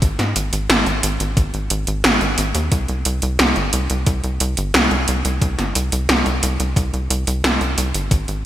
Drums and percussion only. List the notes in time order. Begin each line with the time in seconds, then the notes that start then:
0.02 kick, closed hi-hat
0.19 snare, closed hi-hat
0.36 closed hi-hat
0.53 closed hi-hat
0.70 snare, closed hi-hat
0.86 closed hi-hat
1.03 closed hi-hat
1.20 closed hi-hat
1.37 kick, closed hi-hat
1.54 closed hi-hat
1.70 closed hi-hat
1.87 closed hi-hat
2.04 snare, closed hi-hat
2.21 closed hi-hat
2.38 closed hi-hat
2.55 closed hi-hat
2.72 kick, closed hi-hat
2.88 closed hi-hat
3.05 closed hi-hat
3.22 closed hi-hat
3.39 snare, closed hi-hat
3.56 closed hi-hat
3.73 closed hi-hat
3.90 closed hi-hat
4.06 kick, closed hi-hat
4.24 closed hi-hat
4.40 closed hi-hat
4.57 closed hi-hat
4.74 snare, closed hi-hat
4.91 closed hi-hat
5.08 closed hi-hat
5.25 closed hi-hat
5.42 kick, closed hi-hat
5.59 snare, closed hi-hat
5.75 closed hi-hat
5.92 closed hi-hat
6.09 snare, closed hi-hat
6.26 closed hi-hat
6.43 closed hi-hat
6.60 closed hi-hat
6.76 kick, closed hi-hat
6.94 closed hi-hat
7.10 closed hi-hat
7.27 closed hi-hat
7.44 snare, closed hi-hat
7.61 closed hi-hat
7.78 closed hi-hat
7.94 closed hi-hat
8.11 kick, closed hi-hat
8.28 closed hi-hat